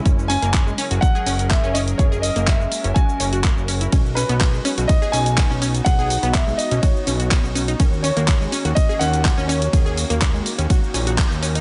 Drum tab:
RD |----------------|----------------|x---x---x---x---|x---x---x---x---|
HH |x-oxx-oxx-oxx-ox|x-oxx-oxx-oxx-ox|x-oxx-oxx-oxx-ox|x-oxx-oxx-oxx-ox|
SH |xxxxxxxxxxxxxxxx|xxxxxxxxxxxxxxxx|xxxxxxxxxxxxxxxx|xxxxxxxxxxxxxxxx|
CP |----x-------x---|----x-------x---|----x-------x---|----x-------x---|
BD |o---o---o---o---|o---o---o---o---|o---o---o---o---|o---o---o---o---|

RD |x---x---x---x---|x---x---x---x---|
HH |x-oxx-oxx-oxx-ox|x-oxx-oxx-oxx-ox|
SH |xxxxxxxxxxxxxxxx|xxxxxxxxxxxxxxxx|
CP |----x-------x---|----x-------x---|
BD |o---o---o---o---|o---o---o---o---|